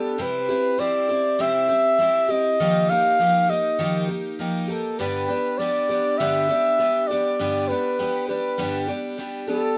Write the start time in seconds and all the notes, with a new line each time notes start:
Already playing: G3 B3 D4 G4 A4
0.18 C3 G3 C4 E4 G4 B4
0.49 C4 E4 G4
0.78 G3 C4 E4 G4 D5
1.09 C4 E4 G4
1.39 C3 G3 C4 E4 G4 E5
1.69 C4 E4 G4
1.98 G3 C4 E4 G4
2.29 C4 E4 G4 D#5
2.60 D#3 F3 A#3 D#4 G4
2.89 A#3 D#4 G4 F5
3.19 F3 A#3 D#4 G4
3.49 A#3 D#4 G4 D#5
3.79 D#3 F3 A#3 D#4 G4
4.08 A#3 D#4 G4
4.39 F3 A#3 D#4 G4
4.68 A#3 D#4 G4 A4
4.99 G2 D3 G3 B3 D4 G4 B4
5.28 G3 B3 D4 G4
5.58 G3 B3 D4 G4 D5
5.89 G3 B3 D4 G4
6.18 G2 D3 G3 B3 D4 G4 E5
6.49 G3 B3 D4 G4
6.79 G3 B3 D4 G4
7.07 D4 G4 D5
7.12 G3 B3
7.39 G2 D3 G3 B3 D4 G4
7.68 B3 D4 G4 B4
7.72 G3
7.99 G3 B3 D4 G4
8.29 G3 B3 D4 G4 B4
8.58 G2 D3 G3 B3 D4 G4
8.88 G3 B3 D4 G4
9.18 G3 B3 D4 G4
9.48 G3 B3 D4 G4 A4